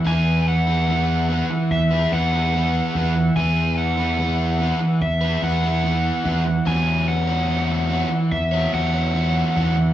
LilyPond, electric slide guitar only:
\new Staff \with { instrumentName = "Electric slide guitar" } { \time 4/4 \key e \major \tempo 4 = 73 gis''8 fis''4. e''8 fis''4. | gis''8 fis''4. e''8 fis''4. | gis''8 fis''4. e''8 fis''4. | }